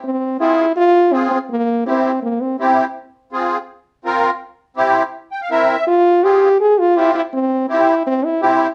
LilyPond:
<<
  \new Staff \with { instrumentName = "Accordion" } { \time 4/4 \key f \minor \tempo 4 = 165 << { r1 | r1 | r1 | r2 r8 g''16 f''16 e''4 |
r1 | r1 | } \\ { r4 <c' f' aes'>8 r4. <c' f' aes'>8 r8 | r4 <c' e' g'>8 r4. <c' e' g'>8 r8 | r4 <c' f' aes'>8 r4. <c' f' bes'>8 r8 | r4 <c' e' g'>8 r4. <c' e' bes'>8 r8 |
r4 <c' f' aes'>8 r4. <c' f' g'>8 r8 | r4 <c' e' g'>8 r4. <c' e' g'>8 r8 | } >> }
  \new Staff \with { instrumentName = "French horn" } { \time 4/4 \key f \minor c'4 e'4 f'4 c'8 c'8 | bes4 c'4 bes8 c'8 c'8. r16 | r1 | r1 |
f'4 g'4 aes'8 f'8 e'8 e'8 | c'4 e'4 c'8 e'8 e'8. r16 | }
>>